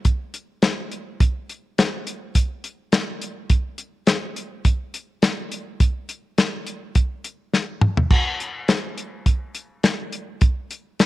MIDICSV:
0, 0, Header, 1, 2, 480
1, 0, Start_track
1, 0, Tempo, 576369
1, 996, Time_signature, 4, 2, 24, 8
1, 9210, End_track
2, 0, Start_track
2, 0, Title_t, "Drums"
2, 40, Note_on_c, 9, 42, 75
2, 43, Note_on_c, 9, 36, 77
2, 123, Note_off_c, 9, 42, 0
2, 127, Note_off_c, 9, 36, 0
2, 282, Note_on_c, 9, 42, 57
2, 365, Note_off_c, 9, 42, 0
2, 518, Note_on_c, 9, 42, 76
2, 522, Note_on_c, 9, 38, 107
2, 601, Note_off_c, 9, 42, 0
2, 605, Note_off_c, 9, 38, 0
2, 762, Note_on_c, 9, 42, 56
2, 846, Note_off_c, 9, 42, 0
2, 1002, Note_on_c, 9, 42, 79
2, 1003, Note_on_c, 9, 36, 97
2, 1085, Note_off_c, 9, 42, 0
2, 1087, Note_off_c, 9, 36, 0
2, 1245, Note_on_c, 9, 42, 53
2, 1328, Note_off_c, 9, 42, 0
2, 1486, Note_on_c, 9, 42, 80
2, 1490, Note_on_c, 9, 38, 105
2, 1569, Note_off_c, 9, 42, 0
2, 1573, Note_off_c, 9, 38, 0
2, 1722, Note_on_c, 9, 42, 60
2, 1806, Note_off_c, 9, 42, 0
2, 1957, Note_on_c, 9, 42, 83
2, 1959, Note_on_c, 9, 36, 78
2, 2041, Note_off_c, 9, 42, 0
2, 2042, Note_off_c, 9, 36, 0
2, 2198, Note_on_c, 9, 42, 65
2, 2281, Note_off_c, 9, 42, 0
2, 2434, Note_on_c, 9, 42, 83
2, 2439, Note_on_c, 9, 38, 113
2, 2518, Note_off_c, 9, 42, 0
2, 2522, Note_off_c, 9, 38, 0
2, 2677, Note_on_c, 9, 42, 60
2, 2760, Note_off_c, 9, 42, 0
2, 2911, Note_on_c, 9, 42, 78
2, 2914, Note_on_c, 9, 36, 95
2, 2994, Note_off_c, 9, 42, 0
2, 2997, Note_off_c, 9, 36, 0
2, 3148, Note_on_c, 9, 42, 56
2, 3231, Note_off_c, 9, 42, 0
2, 3388, Note_on_c, 9, 42, 73
2, 3392, Note_on_c, 9, 38, 95
2, 3471, Note_off_c, 9, 42, 0
2, 3475, Note_off_c, 9, 38, 0
2, 3634, Note_on_c, 9, 42, 55
2, 3717, Note_off_c, 9, 42, 0
2, 3871, Note_on_c, 9, 42, 73
2, 3872, Note_on_c, 9, 36, 80
2, 3954, Note_off_c, 9, 42, 0
2, 3956, Note_off_c, 9, 36, 0
2, 4114, Note_on_c, 9, 42, 62
2, 4197, Note_off_c, 9, 42, 0
2, 4349, Note_on_c, 9, 42, 79
2, 4354, Note_on_c, 9, 38, 105
2, 4433, Note_off_c, 9, 42, 0
2, 4437, Note_off_c, 9, 38, 0
2, 4594, Note_on_c, 9, 42, 62
2, 4677, Note_off_c, 9, 42, 0
2, 4832, Note_on_c, 9, 42, 74
2, 4833, Note_on_c, 9, 36, 100
2, 4915, Note_off_c, 9, 42, 0
2, 4916, Note_off_c, 9, 36, 0
2, 5071, Note_on_c, 9, 42, 54
2, 5154, Note_off_c, 9, 42, 0
2, 5313, Note_on_c, 9, 42, 79
2, 5317, Note_on_c, 9, 38, 98
2, 5396, Note_off_c, 9, 42, 0
2, 5400, Note_off_c, 9, 38, 0
2, 5551, Note_on_c, 9, 42, 57
2, 5634, Note_off_c, 9, 42, 0
2, 5789, Note_on_c, 9, 42, 84
2, 5793, Note_on_c, 9, 36, 85
2, 5873, Note_off_c, 9, 42, 0
2, 5876, Note_off_c, 9, 36, 0
2, 6033, Note_on_c, 9, 42, 69
2, 6116, Note_off_c, 9, 42, 0
2, 6276, Note_on_c, 9, 38, 59
2, 6359, Note_off_c, 9, 38, 0
2, 6508, Note_on_c, 9, 45, 85
2, 6592, Note_off_c, 9, 45, 0
2, 6640, Note_on_c, 9, 43, 75
2, 6724, Note_off_c, 9, 43, 0
2, 6750, Note_on_c, 9, 49, 90
2, 6751, Note_on_c, 9, 36, 100
2, 6833, Note_off_c, 9, 49, 0
2, 6835, Note_off_c, 9, 36, 0
2, 6997, Note_on_c, 9, 42, 49
2, 7081, Note_off_c, 9, 42, 0
2, 7231, Note_on_c, 9, 42, 66
2, 7235, Note_on_c, 9, 38, 99
2, 7314, Note_off_c, 9, 42, 0
2, 7318, Note_off_c, 9, 38, 0
2, 7475, Note_on_c, 9, 42, 54
2, 7558, Note_off_c, 9, 42, 0
2, 7712, Note_on_c, 9, 36, 77
2, 7712, Note_on_c, 9, 42, 74
2, 7795, Note_off_c, 9, 36, 0
2, 7795, Note_off_c, 9, 42, 0
2, 7950, Note_on_c, 9, 42, 55
2, 8033, Note_off_c, 9, 42, 0
2, 8190, Note_on_c, 9, 42, 75
2, 8195, Note_on_c, 9, 38, 108
2, 8274, Note_off_c, 9, 42, 0
2, 8278, Note_off_c, 9, 38, 0
2, 8432, Note_on_c, 9, 42, 56
2, 8515, Note_off_c, 9, 42, 0
2, 8669, Note_on_c, 9, 42, 69
2, 8675, Note_on_c, 9, 36, 104
2, 8753, Note_off_c, 9, 42, 0
2, 8758, Note_off_c, 9, 36, 0
2, 8916, Note_on_c, 9, 42, 57
2, 8999, Note_off_c, 9, 42, 0
2, 9157, Note_on_c, 9, 42, 76
2, 9161, Note_on_c, 9, 38, 105
2, 9210, Note_off_c, 9, 38, 0
2, 9210, Note_off_c, 9, 42, 0
2, 9210, End_track
0, 0, End_of_file